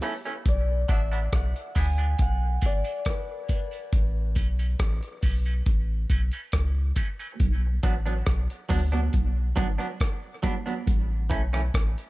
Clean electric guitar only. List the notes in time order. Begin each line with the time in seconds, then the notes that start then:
0.02 E3 A3 C#4
0.25 E3 A3 C#4
0.88 F#3 B3 D4
1.12 F#3 B3 D4
1.75 F#3 B3 D4
1.98 F#3 B3 D4
2.62 F#3 B3 D4
2.84 F#3 B3 D4
3.49 F#3 B3 D4
3.71 F#3 B3 D4
4.36 E3 A3 C#4
4.59 E3 A3 C#4
5.23 E3 A3 C#4
5.46 E3 A3 C#4
6.10 E3 A3 C#4
6.33 E3 A3 C#4
6.96 E3 A3 C#4
7.19 E3 A3 C#4
7.83 F#3 B3 D4
8.06 F#3 B3 D4
8.69 F#3 B3 D4
8.92 F#3 B3 D4
9.56 F#3 B3 D4
9.78 F#3 B3 D4
10.43 F#3 B3 D4
10.66 F#3 B3 D4
11.30 E3 A3 C#4
11.53 E3 A3 C#4